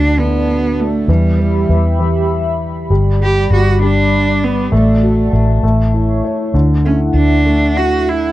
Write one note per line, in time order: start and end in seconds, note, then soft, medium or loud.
0.00 1.04 D2 medium
0.00 0.18 D3 soft
0.00 0.21 D4 medium
0.00 1.06 F#4 medium
0.00 1.06 D5 medium
0.00 1.06 A5 medium
0.18 1.06 D3 soft
0.18 0.81 B3 medium
0.80 1.12 A3 medium
1.07 1.65 E2 medium
1.07 1.37 E3 medium
1.07 1.78 G3 medium
1.07 2.88 G4 medium
1.07 2.88 E5 medium
1.07 2.88 B5 medium
1.39 1.68 E3 soft
1.69 2.86 E2 medium
1.69 1.98 E3 soft
1.99 2.88 E3 soft
2.89 3.47 G1 medium
2.89 4.70 G3 medium
2.89 3.19 G3 medium
2.89 5.60 D5 medium
2.89 4.70 B5 medium
3.21 3.50 G3 soft
3.21 3.50 G4 medium
3.50 4.68 G1 medium
3.50 3.80 G3 soft
3.50 3.80 F#4 medium
3.82 4.70 G3 soft
3.82 4.46 D4 medium
4.44 4.73 B3 medium
4.71 5.29 A1 medium
4.71 5.31 A3 medium
4.71 5.37 A3 medium
4.71 5.61 F#4 medium
4.71 6.51 A5 medium
5.03 5.61 F#4 soft
5.33 5.61 A1 medium
5.33 5.62 A3 soft
5.63 6.20 A1 medium
5.63 6.51 A3 soft
5.63 8.32 E4 medium
5.63 6.53 C#5 medium
5.94 6.52 E4 soft
6.24 6.53 C#5 soft
6.54 7.11 D2 medium
6.54 7.14 D3 medium
6.54 8.32 E5 medium
6.54 8.32 F#5 medium
6.85 7.43 A3 soft
6.85 6.99 C#4 medium
7.14 8.31 D2 medium
7.14 8.32 D3 soft
7.14 7.79 D4 medium
7.45 8.32 A3 soft
7.77 8.10 F#4 medium
8.09 8.32 E4 medium